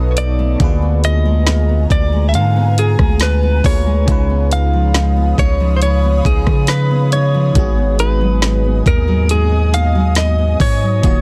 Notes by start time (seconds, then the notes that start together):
Already playing: B1 B2 B3 D#4 A4 B4
0.17 D#4 D5, closed hi-hat
0.39 A3
0.58 D2 D3 A#3 F4 G#5 A#5, kick, closed hi-hat
0.62 G#4 B4
0.82 B3
1.04 F4 D#5, closed hi-hat
1.25 G#3
1.47 F4, snare, closed hi-hat
1.69 B3
1.90 D2 F4 D5, kick, closed hi-hat
2.13 G#3
2.29 E5
2.34 G#2 D3 F5, closed hi-hat
2.56 B3
2.78 F4 G#4, closed hi-hat
2.99 D2 G#3, kick, cross-stick
3.20 F4 B4, snare, closed hi-hat
3.43 B3
3.64 D2 D3 A#3 F4 G#4 B4 C#5, kick, open hi-hat
3.86 G#3
4.06 C#2 C#3 G#3 D#4 C#5 F5 B5 D#6, kick, closed hi-hat
4.10 F4 B4
4.30 B3
4.51 D#4 F5, closed hi-hat
4.73 F3
4.94 D#4, snare, closed hi-hat
5.17 B3
5.38 C#2 D#4 C#5, kick, closed hi-hat
5.60 F3
5.77 C5
5.82 C#3 C#5, closed hi-hat
6.04 B3
6.25 C#2 D#4 G#4, kick, closed hi-hat
6.47 C#3 F3, kick, cross-stick
6.67 D#4 B4, snare, closed hi-hat
6.91 B3
7.12 D#4 C#5, closed hi-hat
7.34 F3
7.53 G#1 G#2 G#3 B3 D#5 G#5 D#6, kick, closed hi-hat
7.58 F#4 G#4
7.78 B3
7.99 D#4 B4, closed hi-hat
8.21 F#3
8.42 D#4, snare, closed hi-hat
8.64 B3
8.86 D#2 D#4 A#4, kick, closed hi-hat
9.08 F#3
9.29 G#2 G#4, closed hi-hat
9.51 B3
9.73 D#4 F5, closed hi-hat
9.95 F#3
10.15 D#4 D#5, snare, closed hi-hat
10.39 B3
10.60 G#2 D#4 C#5, kick, open hi-hat
10.82 F#3
11.02 D#1 D#3 A#3 F4, kick, closed hi-hat
11.06 F#4 C#5